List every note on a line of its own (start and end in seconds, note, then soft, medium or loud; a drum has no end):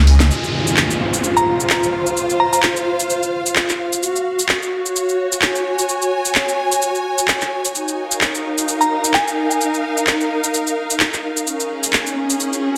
0.00 0.29 C#2 loud
0.00 0.31 C#4 medium
0.00 1.75 G#4 medium
0.00 1.05 D#5 medium
0.07 open hi-hat loud
0.20 snare medium
0.20 closed hi-hat medium
0.20 cabasa medium
0.30 4.03 F4 medium
0.30 downlifter medium
0.30 cabasa soft
0.44 cabasa soft
0.52 5.52 F5 medium
0.67 cabasa medium
0.77 clap loud
0.77 cabasa medium
0.90 cabasa soft
1.01 4.03 C5 medium
1.14 cabasa medium
1.24 cabasa medium
1.37 1.56 A#5 medium
1.37 cabasa soft
1.60 cabasa medium
1.70 clap loud
1.70 cabasa medium
1.83 cabasa soft
2.07 cabasa medium
2.17 cabasa soft
2.30 cabasa soft
2.40 2.48 A#5 medium
2.53 2.59 A#5 medium
2.53 cabasa medium
2.63 clap loud
2.63 cabasa medium
2.76 cabasa soft
3.00 cabasa medium
3.10 cabasa medium
3.23 cabasa soft
3.46 cabasa medium
3.56 clap loud
3.56 cabasa medium
3.69 clap soft
3.69 cabasa soft
3.93 cabasa medium
4.03 9.01 F#4 medium
4.03 cabasa soft
4.16 cabasa soft
4.39 cabasa medium
4.49 clap loud
4.49 cabasa medium
4.62 cabasa soft
4.68 9.12 C#5 medium
4.86 cabasa medium
4.96 cabasa medium
5.09 cabasa soft
5.32 8.90 G#5 medium
5.32 cabasa medium
5.42 clap loud
5.42 cabasa medium
5.55 cabasa soft
5.79 cabasa medium
5.89 cabasa soft
6.02 cabasa soft
6.25 cabasa medium
6.35 clap loud
6.35 cabasa medium
6.49 cabasa soft
6.72 cabasa medium
6.82 cabasa medium
6.95 cabasa soft
7.18 cabasa medium
7.28 clap loud
7.28 cabasa medium
7.41 clap soft
7.41 cabasa soft
7.65 cabasa medium
7.75 12.56 D#4 medium
7.75 cabasa medium
7.88 cabasa soft
8.00 12.77 A#4 medium
8.06 12.59 F5 medium
8.11 cabasa medium
8.21 clap loud
8.21 cabasa medium
8.35 cabasa soft
8.58 cabasa medium
8.68 cabasa medium
8.81 9.00 A#5 medium
8.81 cabasa soft
9.04 cabasa medium
9.14 9.51 G#5 medium
9.14 clap loud
9.14 cabasa medium
9.28 cabasa soft
9.51 cabasa medium
9.61 cabasa medium
9.74 cabasa soft
9.97 cabasa medium
10.07 clap loud
10.07 cabasa medium
10.21 cabasa soft
10.44 cabasa medium
10.54 cabasa medium
10.67 cabasa soft
10.90 cabasa medium
11.00 clap loud
11.00 cabasa medium
11.13 clap soft
11.13 cabasa soft
11.37 cabasa medium
11.47 12.77 C#4 medium
11.47 riser medium
11.47 cabasa medium
11.60 12.77 G#4 medium
11.60 cabasa soft
11.83 cabasa medium
11.93 clap loud
11.93 cabasa medium
12.07 cabasa soft
12.30 cabasa medium
12.40 cabasa medium
12.53 cabasa soft